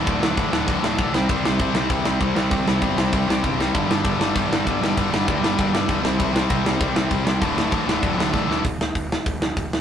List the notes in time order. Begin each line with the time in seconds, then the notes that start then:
0.06 D1 D2 A2 D3, kick, crash
0.20 D1 D2 A2 D3, snare
0.37 A1 D2 A2 D3, kick, crash
0.51 D1 D2 A2 D3, snare
0.67 D1 D2 A2 D3, kick, crash
0.83 D1 D2 A2 D3, snare
0.98 B1 D2 A2 D3, kick, crash
1.13 C2 C3 G3 C4, snare
1.28 C2 C3 G3 C4, kick, crash
1.44 C2 C3 G3 C4, snare
1.59 C2 C3 G3 C4, kick, crash
1.74 C2 C3 G3 C4, snare
1.89 C2 C3 G3 C4, kick, crash
2.04 C2 C3 G3 C4, snare
2.20 C2 C3 G3 C4, kick, crash
2.35 C2 C3 G3 C4, snare
2.51 C2 C3 G3 C4, kick, crash
2.66 C2 C3 G3 C4, snare
2.80 G1 C3 G3 C4, kick, crash
2.96 C2 C3 G3 C4, snare
3.12 C2 C3 G3 C4, kick, crash
3.27 C2 C3 G3 C4, snare
3.43 G1 C3 G3 C4, kick, crash
3.57 C2 C3 G3 C4, snare
3.75 G1 G2 D3 G3, kick, crash
3.88 G1 G2 D3 G3, snare
4.04 G1 G2 D3 G3, kick, crash
4.18 G1 G2 D3 G3, snare
4.34 G1 G2 D3 G3, kick, crash
4.49 G1 G2 D3 G3, snare
4.66 G1 G2 D3 G3, kick, crash
4.80 G1 G2 D3 G3, snare
4.96 G1 G2 D3 G3, kick, crash
5.11 G1 G2 D3 G3, snare
5.27 D2 G2 D3 G3, kick, crash
5.41 G1 G2 D3 G3, snare
5.58 G1 G2 D3 G3, kick, crash
5.73 G1 G2 D3 G3, snare
5.88 D1 G2 D3 G3, kick, crash
6.02 C2 C3 G3 C4, snare
6.18 C2 C3 G3 C4, kick, crash
6.33 C2 C3 G3 C4, snare
6.49 C2 C3 G3 C4, kick, crash
6.64 C2 C3 G3 C4, snare
6.79 C2 C3 G3 C4, kick, crash
6.95 C2 C3 G3 C4, snare
7.09 C2 C3 G3 C4, kick, crash
7.25 C2 C3 G3 C4, snare
7.40 D1 D2 A2 D3, kick, crash
7.55 D1 D2 A2 D3, snare
7.71 A1 D2 A2 D3, kick, crash
7.86 D1 D2 A2 D3, snare
8.01 D1 D2 A2 D3, kick, crash
8.16 D1 D2 A2 D3, snare
8.31 A1 D2 A2 D3, kick, snare
8.47 D1 D2 A2 D3, snare
8.64 D1, kick, open hi-hat
8.79 D1, snare
8.95 D1, kick, open hi-hat
9.12 snare
9.26 D1, kick, open hi-hat
9.40 D1, snare
9.56 D1, kick, open hi-hat
9.71 D1, snare